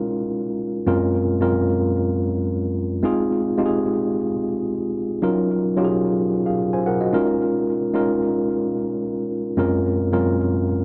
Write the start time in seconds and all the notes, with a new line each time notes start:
Already playing: G#3 C#4 D#4 E4 F4 A#4
0.87 F#2 G#3 C4 C#4 F4 A#4
1.40 F#2 G#3 C4 C#4 F4 A#4
3.03 G#3 C4 D#4 F4 G#4
3.58 G#3 C4 D#4 F4 G4
3.66 G#4
5.22 F#3 C#4 D#4 F4 A#4
5.77 F#3 C#4 D#4 F4 G4
5.85 G#4
6.46 G#4 F5
6.73 C5 G#5
6.86 A#4 F#5
7.01 F#4 D#5
7.13 G#3 C#4 D#4 F4 A#4
7.94 G#3 C#4 D#4 F4 A#4
9.57 F#2 G#3 C4 C#4 F4 A#4
10.12 F#2 G#3 C4 C#4 F4 A#4